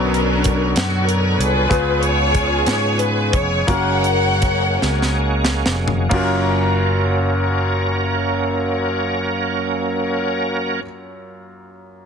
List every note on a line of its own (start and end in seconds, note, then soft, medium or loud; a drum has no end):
0.00 0.72 B1 medium
0.00 0.72 B2 medium
0.00 1.66 D3 medium
0.00 1.68 D3 medium
0.00 1.67 F#3 medium
0.00 1.66 B3 medium
0.00 3.63 B3 medium
0.00 0.72 C#4 medium
0.00 0.72 D4 medium
0.00 0.75 A#4 medium
0.00 1.66 C#5 medium
0.14 closed hi-hat soft
0.44 kick medium
0.44 closed hi-hat medium
0.76 1.35 F#2 medium
0.76 1.05 F#4 medium
0.76 snare medium
0.76 closed hi-hat medium
1.06 1.38 A#4 medium
1.06 closed hi-hat soft
1.37 1.68 C2 medium
1.37 2.03 F4 medium
1.37 2.03 G#4 medium
1.37 2.01 B4 medium
1.37 closed hi-hat medium
1.68 2.62 C#2 loud
1.68 2.62 C#3 medium
1.68 6.07 G#3 medium
1.68 3.63 B3 medium
1.68 3.63 C#4 medium
1.68 6.08 C#4 medium
1.68 3.63 F4 medium
1.68 3.64 G#4 medium
1.68 3.66 G#4 medium
1.68 3.64 B4 medium
1.68 kick medium
1.68 closed hi-hat medium
2.01 2.96 F4 medium
2.01 2.96 G#4 medium
2.01 2.65 C#5 medium
2.01 closed hi-hat soft
2.35 kick medium
2.35 closed hi-hat medium
2.66 3.35 G#2 medium
2.66 2.97 C#5 medium
2.66 snare medium
2.66 closed hi-hat medium
2.99 3.33 B4 medium
2.99 closed hi-hat soft
3.33 3.65 F1 medium
3.33 3.68 C#5 medium
3.33 kick medium
3.33 closed hi-hat medium
3.67 4.77 F#1 medium
3.67 6.07 A#3 medium
3.67 6.09 A#3 medium
3.67 6.07 C#4 medium
3.67 6.09 F#4 medium
3.67 6.08 F#4 medium
3.67 6.08 A#4 medium
3.67 5.23 F#5 medium
3.67 kick medium
3.67 closed hi-hat medium
3.71 5.19 A#4 medium
3.71 5.20 C#5 medium
4.04 closed hi-hat soft
4.42 kick medium
4.42 closed hi-hat medium
4.82 5.62 C#2 medium
4.82 snare soft
5.02 snare soft
5.45 snare medium
5.66 6.08 F1 medium
5.66 snare medium
5.88 floor tom medium
6.09 10.81 F#1 medium
6.09 10.82 F#2 medium
6.09 10.80 F#3 medium
6.09 10.79 A#3 medium
6.09 10.80 A#3 medium
6.09 10.80 C#4 medium
6.09 10.81 C#4 medium
6.09 10.82 F4 medium
6.09 10.80 A#4 medium
6.09 kick medium
6.09 crash medium
6.14 10.83 F#4 medium
6.14 10.84 A#4 medium